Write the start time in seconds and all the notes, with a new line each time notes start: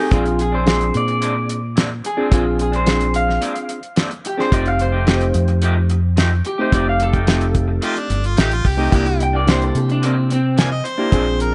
Already playing: G4 G#4
0.00 A3 D#4
0.11 A#1 A#2 G#3 C4 D4 F4 G#4, kick, closed hi-hat
0.25 muted clean electric guitar stroke, closed hi-hat
0.39 G#4, muted clean electric guitar stroke, closed hi-hat
0.52 G#3 C4 D4 C5
0.66 A#2 G#3 C4 D4 F4 G#4, snare, closed hi-hat
0.81 closed hi-hat
0.94 A#2 D5, muted clean electric guitar stroke, closed hi-hat
1.08 muted clean electric guitar stroke, closed hi-hat
1.21 A#2 G#3 C4 D4, closed hi-hat
1.35 muted clean electric guitar stroke
1.49 muted clean electric guitar stroke, closed hi-hat
1.76 A#2 G#3 C4 D4, snare, closed hi-hat
1.90 muted clean electric guitar stroke
2.04 G#4, muted clean electric guitar stroke, closed hi-hat
2.17 G#3 C4 D4 F4 G#4
2.31 A#1 A#2 G#3 C4 D4 F4 G#4, kick, closed hi-hat
2.45 muted clean electric guitar stroke
2.58 G#4, muted clean electric guitar stroke, closed hi-hat
2.72 G#3 C4 D4 C5, closed hi-hat
2.85 A#2 G#3 C4 D4 F4 G#4, snare, closed hi-hat
3.01 closed hi-hat
3.13 F5, muted clean electric guitar stroke, closed hi-hat
3.27 muted clean electric guitar stroke, snare
3.41 A#2 G#3 C4 D4, closed hi-hat
3.55 muted clean electric guitar stroke, closed hi-hat
3.69 muted clean electric guitar stroke, closed hi-hat
3.83 closed hi-hat
3.96 A#2 G#3 C4 D4, snare, closed hi-hat
4.11 muted clean electric guitar stroke, closed hi-hat
4.24 G4, muted clean electric guitar stroke, closed hi-hat
4.37 G#3 C4 D4 F4 G#4 C5, snare
4.52 F1 F3 A3 C4 D#4 G4 D5, kick, closed hi-hat
4.66 F5, muted clean electric guitar stroke, closed hi-hat
4.79 C5, muted clean electric guitar stroke, closed hi-hat
4.92 A3 D#4 G4
5.06 F3 A3 C4 D#4 G4, snare, closed hi-hat
5.21 closed hi-hat
5.34 F2, muted clean electric guitar stroke, closed hi-hat
5.48 muted clean electric guitar stroke, closed hi-hat
5.62 F3 A3 D#4 G4, closed hi-hat
5.76 muted clean electric guitar stroke
5.90 muted clean electric guitar stroke, closed hi-hat
6.17 F3 A3 D#4 G4, snare, closed hi-hat
6.31 muted clean electric guitar stroke
6.44 G4, muted clean electric guitar stroke, closed hi-hat
6.58 A3 C4 D#4 G4 C5
6.72 F1 F3 A3 C4 D#4 G4 D5, kick, closed hi-hat
6.86 F5, muted clean electric guitar stroke
7.00 A4, muted clean electric guitar stroke, closed hi-hat
7.13 A3 D#4 G4, kick, closed hi-hat
7.27 F3 A3 C4 D#4 G4, snare, closed hi-hat
7.41 closed hi-hat
7.54 muted clean electric guitar stroke, kick, closed hi-hat
7.68 muted clean electric guitar stroke
7.82 F3 A3 D#4 F4 G4, closed hi-hat
7.96 D4, muted clean electric guitar stroke, closed hi-hat
8.10 G1, muted clean electric guitar stroke, closed hi-hat
8.24 F4, closed hi-hat
8.37 A1 F3 A3 D#4 G4, snare, closed hi-hat
8.51 F4, muted clean electric guitar stroke, closed hi-hat
8.65 C2 G4, muted clean electric guitar stroke, kick, open hi-hat
8.77 A3 C4 D#4 G4
8.91 C2 C3 E3 A#3 D4 E4 G4, kick, closed hi-hat
8.95 G4
9.06 muted clean electric guitar stroke, closed hi-hat
9.19 G5, muted clean electric guitar stroke, closed hi-hat
9.33 E3 A#3 D4 D5
9.46 C3 E3 A#3 D4 E4 G4 C5, snare, closed hi-hat
9.62 A4, closed hi-hat
9.75 C3 G4, muted clean electric guitar stroke, closed hi-hat
9.89 D4, muted clean electric guitar stroke, closed hi-hat
10.02 C3 E3 A#3 C4 D4, closed hi-hat
10.16 muted clean electric guitar stroke
10.29 C4, muted clean electric guitar stroke, closed hi-hat
10.56 C3 E3 A#3 D4 G#5, snare, closed hi-hat
10.71 D#5, muted clean electric guitar stroke
10.84 C5, muted clean electric guitar stroke, closed hi-hat
10.98 E3 A#3 D4 E4 G4
11.11 A#1 A#2 G#3 C4 D4 F4 G#4, kick, closed hi-hat
11.26 muted clean electric guitar stroke
11.39 A#4, muted clean electric guitar stroke, closed hi-hat